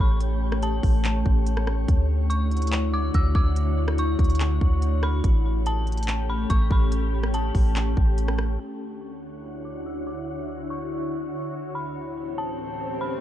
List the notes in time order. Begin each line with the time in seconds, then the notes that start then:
Already playing: A3 C#4 G4 A4 C#5 G5
0.00 A1 B5
0.20 closed hi-hat
0.52 cross-stick
0.62 A5, closed hi-hat
0.83 A1, kick, open hi-hat
1.05 clap, closed hi-hat
1.26 A1, kick
1.46 closed hi-hat
1.57 cross-stick
1.67 cross-stick
1.88 D2 D3 D4 E4 F#4 C#5 F#5, kick, closed hi-hat
2.30 C#6, closed hi-hat
2.51 closed hi-hat
2.57 closed hi-hat
2.62 closed hi-hat
2.67 closed hi-hat
2.72 clap, closed hi-hat
2.94 D6
3.14 D2 E6, kick, closed hi-hat
3.35 D2 D6, kick
3.56 closed hi-hat
3.88 cross-stick
3.98 C#6, closed hi-hat
4.19 D2, kick, closed hi-hat
4.24 closed hi-hat
4.30 closed hi-hat
4.35 closed hi-hat
4.40 clap, closed hi-hat
4.61 D2, kick
4.82 closed hi-hat
5.03 B5, cross-stick
5.24 A1 A3 C#4 G4 A4 G5, kick, closed hi-hat
5.66 A5, closed hi-hat
5.87 closed hi-hat
5.92 closed hi-hat
5.97 closed hi-hat
6.03 closed hi-hat
6.08 clap, closed hi-hat
6.30 B5
6.50 A1 C#6, kick, closed hi-hat
6.71 A1 B5, kick
6.92 closed hi-hat
7.23 cross-stick
7.34 A5, closed hi-hat
7.55 A1, kick, open hi-hat
7.76 clap, closed hi-hat
7.97 A1, kick
8.18 closed hi-hat
8.28 cross-stick
8.38 cross-stick
8.60 D2 D3 D4 E4 F#4 C#5 F#5
9.01 C#6
9.65 D6
9.86 E6
10.07 D6
10.70 C#6
11.75 B5
11.95 A2 E3 B3 C#4 G4 A4 G5, swell
12.38 A5
13.01 B5